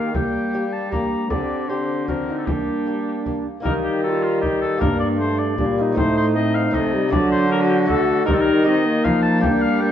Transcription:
Already playing: lute D#3 A#3 D#4 G4, cello D#3, trombone A#3, recorder G4, oboe F5
0.14 cello G3, lute G3, trombone A#3, recorder G4, oboe G5, frame drum
0.53 lute A#3 D4 G4
0.73 oboe A5
0.90 trombone A#3, lute A#3 D4 G4, recorder G4, oboe A#5, frame drum
1.29 lute D3, cello D3, trombone C4, recorder G4 A4, oboe D5, frame drum
1.69 trombone C4, lute C4 D4 G4, recorder G4, oboe C5
2.06 trombone C4, lute C4 D4 F#4, recorder F#4, oboe A#4, frame drum
2.28 recorder D#4 F4
2.37 oboe A4
2.46 lute G3, cello G3, trombone A#3, recorder D4, oboe G4, frame drum
2.86 lute A#3 D4 G4
3.26 lute A#3 D4 G4, frame drum
3.60 lute D#3 A#3 D#4 G4, oboe A#4
3.65 cello D#3, trombone G3, recorder D#4, frame drum
3.84 oboe G4
4.03 recorder F#4, oboe A4
4.08 recorder F4
4.23 oboe F4
4.41 recorder D#4, oboe G4, frame drum
4.61 oboe A4
4.77 lute G2 A#3 D4 G4, trombone A#3, recorder D4, oboe A#4
4.81 cello G2, frame drum
5.00 oboe D5
5.18 trombone A3, oboe C5
5.39 oboe D5
5.57 lute A#2, cello A#2, trombone G3, recorder D4, frame drum
5.78 recorder D#4 F4
5.92 lute A2 A3 C4 D#4, trombone A3
5.97 cello A2, oboe C5, frame drum
6.17 oboe C5
6.35 trombone C4, oboe D#5
6.55 oboe F5
6.70 cello C3, lute C3 A3 C4 D#4, trombone A3, oboe D#5, frame drum
6.94 trombone G3
7.09 cello D3, lute D3 A3 D4 F#4, recorder D4, oboe D5, frame drum
7.13 trombone F#3
7.32 oboe C5
7.49 recorder F#4, oboe A#4
7.69 oboe G4
7.85 lute A3 D4 F#4, trombone A3, oboe A4
7.89 frame drum
8.25 lute D#3 D#4 G4, cello D#3, trombone G3, recorder D#4, oboe A#4, frame drum
8.34 oboe A4
8.40 oboe A#4
8.63 trombone C4, lute D#4 G4, oboe D#5
8.86 trombone A#3
9.04 cello F3, lute F3, oboe F5, frame drum
9.22 oboe A5
9.39 lute A#3 D4 G4, recorder D4, oboe G5
9.43 lute G3, cello G3, frame drum
9.61 oboe F5
9.81 trombone A#3, oboe G5

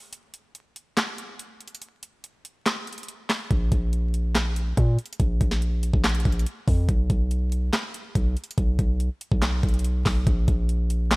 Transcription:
0.13 closed hi-hat
0.34 closed hi-hat
0.55 closed hi-hat
0.76 closed hi-hat
0.97 snare, clap, closed hi-hat
1.18 closed hi-hat
1.39 closed hi-hat
1.60 closed hi-hat
1.68 closed hi-hat
1.75 closed hi-hat
1.82 closed hi-hat
2.03 closed hi-hat
2.24 closed hi-hat
2.45 closed hi-hat
2.66 snare, clap, closed hi-hat
2.87 closed hi-hat
2.93 closed hi-hat
2.98 closed hi-hat
3.03 closed hi-hat
3.08 closed hi-hat
3.29 snare, clap, open hi-hat
3.51 808-style bass A#1, kick, closed hi-hat
3.72 808-style bass A#1, kick, closed hi-hat
3.93 closed hi-hat
4.14 closed hi-hat
4.35 snare, clap, closed hi-hat
4.56 closed hi-hat
4.77 808-style bass A#2, kick, closed hi-hat
4.99 closed hi-hat
5.06 closed hi-hat
5.13 closed hi-hat
5.20 808-style bass A#1, kick, closed hi-hat
5.41 808-style bass A#1, kick, closed hi-hat
5.51 snare
5.62 closed hi-hat
5.83 closed hi-hat
5.94 808-style bass A#1, kick
6.04 snare, clap, closed hi-hat
6.09 closed hi-hat
6.15 closed hi-hat
6.20 closed hi-hat
6.25 808-style bass A#1, kick, closed hi-hat
6.32 closed hi-hat
6.39 closed hi-hat
6.46 closed hi-hat
6.68 808-style bass F2, kick, open hi-hat
6.89 808-style bass B1, kick, closed hi-hat
7.10 808-style bass B1, kick, closed hi-hat
7.31 closed hi-hat
7.52 closed hi-hat
7.73 snare, clap, closed hi-hat
7.94 closed hi-hat
8.15 808-style bass B1, kick, closed hi-hat
8.37 closed hi-hat
8.44 closed hi-hat
8.51 closed hi-hat
8.58 808-style bass B1, kick, closed hi-hat
8.79 808-style bass B1, kick, closed hi-hat
9.00 closed hi-hat
9.21 closed hi-hat
9.32 808-style bass B1, kick
9.42 snare, clap, closed hi-hat
9.63 808-style bass B1, kick, closed hi-hat
9.69 closed hi-hat
9.74 closed hi-hat
9.79 closed hi-hat
9.84 closed hi-hat
10.06 808-style bass B1, kick, snare, clap, open hi-hat
10.27 808-style bass A#1, kick, closed hi-hat
10.48 808-style bass A#1, kick, closed hi-hat
10.69 closed hi-hat
10.90 closed hi-hat
11.11 snare, clap, closed hi-hat

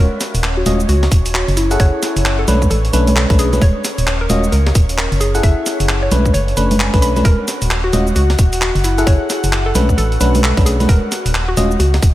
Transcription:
Already playing: analog synth pad C#4 C#5, synth pluck A#4
0.21 snare, closed hi-hat, shaker
0.34 fm bass D#1, closed hi-hat, shaker
0.43 clap, shaker
0.57 synth pluck F#4
0.66 fm bass D#1, fm electric piano C#4 F4 F#4 D#5, closed hi-hat, high conga, shaker
0.80 shaker
0.89 fm bass C#2, synth pluck F#4, closed hi-hat, shaker
1.03 snare, closed hi-hat
1.12 fm bass D#1, kick, closed hi-hat, shaker
1.26 closed hi-hat, shaker
1.34 synth pluck F#4, clap, shaker
1.48 fm bass F#1, closed hi-hat
1.57 synth pluck E4, closed hi-hat, shaker
1.71 fm electric piano E4 G#4 A4 F#5, closed hi-hat, shaker
1.80 fm bass F#1, synth pluck C#5, kick, closed hi-hat, shaker
2.03 snare, closed hi-hat, shaker
2.16 fm bass F#1, closed hi-hat, shaker
2.25 clap, shaker
2.39 synth pluck A4
2.48 fm bass B1, fm electric piano A3 C#4 D4 B4, closed hi-hat, high conga, shaker
2.62 kick, shaker
2.70 fm bass A1, synth pluck A4, closed hi-hat, shaker
2.85 closed hi-hat
2.93 fm bass B1, fm electric piano A3 C#4 D4 B4, closed hi-hat, shaker
3.07 closed hi-hat, high conga, shaker
3.16 synth pluck A4, clap, shaker
3.30 fm bass B1, fm electric piano A3 C#4 D4 B4, kick, closed hi-hat
3.39 synth pluck G#4, closed hi-hat, shaker
3.53 fm electric piano A3 C#4 D4 B4, closed hi-hat, high conga, shaker
3.62 fm bass D#1, synth pluck C#5, kick, closed hi-hat, shaker
3.85 snare, closed hi-hat, shaker
3.98 fm bass D#1, closed hi-hat, shaker
4.07 clap, shaker
4.21 synth pluck A#4
4.30 fm bass D#1, fm electric piano C#4 F4 F#4 D#5, closed hi-hat, high conga, shaker
4.44 shaker
4.52 fm bass C#2, synth pluck A#4, closed hi-hat, shaker
4.67 snare, closed hi-hat
4.75 fm bass D#1, kick, closed hi-hat, shaker
4.89 closed hi-hat, shaker
4.98 synth pluck A#4, clap, shaker
5.12 fm bass F#1, closed hi-hat
5.21 synth pluck G#4, closed hi-hat, shaker
5.35 fm electric piano E4 G#4 A4 F#5, closed hi-hat, shaker
5.43 fm bass F#1, synth pluck E5, kick, closed hi-hat, shaker
5.66 snare, closed hi-hat, shaker
5.80 fm bass F#1, closed hi-hat, shaker
5.89 clap, shaker
6.03 synth pluck C#5
6.11 fm bass B1, fm electric piano A3 C#4 D4 B4, closed hi-hat, high conga, shaker
6.26 kick, shaker
6.34 fm bass F#1, synth pluck C#5, closed hi-hat, shaker
6.48 closed hi-hat
6.57 fm bass F#1, fm electric piano A3 C#4 D4 B4, closed hi-hat, shaker
6.71 closed hi-hat, high conga, shaker
6.79 synth pluck G#5, clap, shaker
6.94 fm bass B1, fm electric piano A3 C#4 D4 B4, kick, closed hi-hat
7.02 synth pluck B5, closed hi-hat, shaker
7.16 fm electric piano A3 C#4 D4 B4, closed hi-hat, high conga, shaker
7.25 fm bass D#1, analog synth pad F#4 F#5, synth pluck A#4, kick, closed hi-hat, shaker
7.48 snare, closed hi-hat, shaker
7.62 fm bass D#1, closed hi-hat, shaker
7.71 clap, shaker
7.84 synth pluck F#4
7.93 fm bass D#1, fm electric piano C#4 F4 F#4 D#5, closed hi-hat, high conga, shaker
8.07 shaker
8.16 fm bass C#2, synth pluck F#4, closed hi-hat, shaker
8.30 snare, closed hi-hat
8.39 fm bass D#1, kick, closed hi-hat, shaker
8.53 closed hi-hat, shaker
8.61 synth pluck F#4, clap, shaker
8.75 fm bass F#1, closed hi-hat
8.84 synth pluck E4, closed hi-hat, shaker
8.98 fm electric piano E4 G#4 A4 F#5, closed hi-hat, shaker
9.07 fm bass F#1, synth pluck C#5, kick, closed hi-hat, shaker
9.30 snare, closed hi-hat, shaker
9.44 fm bass F#1, closed hi-hat, shaker
9.53 clap, shaker
9.66 synth pluck A4
9.75 fm bass B1, fm electric piano A3 C#4 D4 B4, closed hi-hat, high conga, shaker
9.89 kick, shaker
9.98 fm bass A1, synth pluck A4, closed hi-hat, shaker
10.12 closed hi-hat
10.20 fm bass B1, fm electric piano A3 C#4 D4 B4, closed hi-hat, shaker
10.35 closed hi-hat, high conga, shaker
10.43 synth pluck A4, clap, shaker
10.57 fm bass B1, fm electric piano A3 C#4 D4 B4, kick, closed hi-hat
10.66 synth pluck G#4, closed hi-hat, shaker
10.80 fm electric piano A3 C#4 D4 B4, closed hi-hat, high conga, shaker
10.89 fm bass D#1, synth pluck A#4, kick, closed hi-hat, shaker
11.12 snare, closed hi-hat, shaker
11.25 fm bass D#1, closed hi-hat, shaker
11.35 clap, shaker
11.48 synth pluck F#4
11.57 fm bass D#1, fm electric piano C#4 F4 F#4 D#5, closed hi-hat, high conga, shaker
11.71 shaker
11.80 fm bass C#2, synth pluck F#4, closed hi-hat, shaker
11.94 snare, closed hi-hat
12.02 fm bass D#1, kick, closed hi-hat, shaker

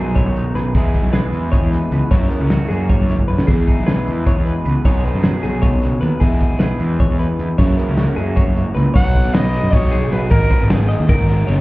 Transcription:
Already playing: fingered electric bass B1, clean electric guitar B2 F#3 G#3 D#4 G#4, overdriven electric guitar B2 D#3 F#3 B3 D#4
0.15 clean electric guitar E4 C#5, kick, closed hi-hat
0.25 fingered electric bass B1, clean electric guitar F#4
0.36 clean electric guitar D#4, closed hi-hat
0.54 fingered electric bass B1, clean electric guitar F#2 G#4 B4, snare, closed hi-hat
0.74 fingered electric bass E2, clean electric guitar E2 E3 G#3 D#4 G#4, overdriven electric guitar E3 G#3 B3 E4, kick, closed hi-hat
0.94 kick, snare, closed hi-hat
1.03 fingered electric bass B1
1.13 clean electric guitar G#4 B4, snare, closed hi-hat
1.32 fingered electric bass E2, clean electric guitar E3 G#3, closed hi-hat
1.52 clean electric guitar G#4 C#5, kick, snare, closed hi-hat
1.61 fingered electric bass E2
1.71 clean electric guitar B4, snare, closed hi-hat
1.91 fingered electric bass C#2, clean electric guitar B2 B4, closed hi-hat
2.11 clean electric guitar F#2 C#5, overdriven electric guitar F#2 C#3 E3 A#3 E4, fingered electric bass F#2, kick, closed hi-hat
2.30 clean electric guitar B3 A#4, closed hi-hat
2.40 fingered electric bass C#2, clean electric guitar C#4
2.50 clean electric guitar F#4, snare, closed hi-hat
2.69 fingered electric bass F#2, clean electric guitar F#3 G#3 G#4, closed hi-hat
2.80 clean electric guitar A#3
2.89 clean electric guitar A#2 C#5, kick, closed hi-hat
3.00 fingered electric bass F#2
3.09 clean electric guitar G#2, snare, closed hi-hat
3.19 kick
3.28 clean electric guitar F#2 B4, fingered electric bass F#2
3.38 snare
3.47 clean electric guitar E2 G#4, fingered electric bass E2, overdriven electric guitar E3 G#3 B3, kick, closed hi-hat
3.51 overdriven electric guitar E4
3.67 clean electric guitar D#4, kick, closed hi-hat
3.79 fingered electric bass B1
3.86 clean electric guitar G#4 B4, snare, closed hi-hat
4.05 fingered electric bass E2, clean electric guitar E3 G#3, closed hi-hat
4.25 clean electric guitar G#4 C#5, kick, snare, closed hi-hat
4.37 fingered electric bass E2
4.45 clean electric guitar B4, closed hi-hat
4.64 fingered electric bass C#2, clean electric guitar B2 B4, closed hi-hat
4.85 fingered electric bass B1, clean electric guitar B2 F#3 G#3 D#4 G#4 C#5, overdriven electric guitar B2 D#3 F#3 B3 D#4, kick, closed hi-hat
5.04 clean electric guitar D#4 B4, closed hi-hat
5.14 fingered electric bass F#2
5.23 clean electric guitar G#4, snare, closed hi-hat
5.42 fingered electric bass B1, clean electric guitar F#3 G#3 G#4, snare, closed hi-hat
5.62 clean electric guitar B2 C#5, kick, snare, closed hi-hat
5.72 fingered electric bass B1
5.82 clean electric guitar C#3, snare, closed hi-hat
6.01 fingered electric bass D#2, clean electric guitar D#3 B4, closed hi-hat
6.20 fingered electric bass E2, clean electric guitar E2 G#4, overdriven electric guitar E3 G#3 B3 E4, kick, closed hi-hat
6.40 kick, closed hi-hat
6.50 fingered electric bass B1
6.59 clean electric guitar G#4 B4, snare, closed hi-hat
6.80 fingered electric bass E2, clean electric guitar E3 G#3, closed hi-hat
7.00 clean electric guitar C#5, kick, closed hi-hat
7.10 fingered electric bass E2
7.19 clean electric guitar B4, closed hi-hat
7.39 fingered electric bass E2, clean electric guitar E2, closed hi-hat
7.58 overdriven electric guitar F#2 C#3 E3 A#3 E4, clean electric guitar F#2 C#5, fingered electric bass F#2, kick, closed hi-hat
7.77 clean electric guitar B3 A#4, closed hi-hat
7.88 fingered electric bass C#2, clean electric guitar C#4
7.97 clean electric guitar F#4, snare, closed hi-hat
8.16 fingered electric bass F#2, clean electric guitar F#3 G#3 G#4, closed hi-hat
8.26 clean electric guitar A#3
8.36 clean electric guitar F#2 C#5, kick, closed hi-hat
8.47 fingered electric bass F#2
8.55 clean electric guitar G#2, closed hi-hat
8.75 fingered electric bass C#2, clean electric guitar A#2 B4, closed hi-hat
8.94 fingered electric bass B1, overdriven electric guitar B2 F#3 B3 D#4, clean electric guitar C#5, trumpet F#5, kick, crash
9.15 overdriven electric guitar F#3 B3 D#4, kick, ride
9.24 fingered electric bass B1
9.34 overdriven electric guitar B2 F#3 B3 D#4, clean electric guitar B4, trumpet D#5, snare, ride
9.54 snare, ride
9.63 fingered electric bass F#2
9.71 fingered electric bass A#1, overdriven electric guitar B2 F#3 B3 D#4, trumpet C#5, clean electric guitar D#5, kick, snare, ride
9.83 fingered electric bass B1
9.91 overdriven electric guitar F#3 B3 D#4, clean electric guitar G#4, snare, ride
10.12 fingered electric bass B1, overdriven electric guitar B2 F#3 B3 D#4, trumpet B4, ride
10.30 fingered electric bass G#1, overdriven electric guitar G#2 D#3 G#3 B3 D#4, clean electric guitar A#4, trumpet A#4, kick, ride
10.50 overdriven electric guitar G#3 B3 D#4, clean electric guitar B4, kick, snare, ride
10.61 fingered electric bass G#1
10.70 overdriven electric guitar D#3 G#3 B3 D#4, trumpet G#4, snare, ride
10.89 clean electric guitar D#5, snare, ride
11.00 fingered electric bass D#2
11.08 fingered electric bass F#1, overdriven electric guitar G#2 D#3 G#3 B3 D#4, clean electric guitar A#4, kick, ride
11.19 fingered electric bass G#1
11.29 overdriven electric guitar G#3 B3 D#4, snare, ride
11.47 fingered electric bass F#1, overdriven electric guitar D#3 G#3 B3 D#4, clean electric guitar C#5, ride

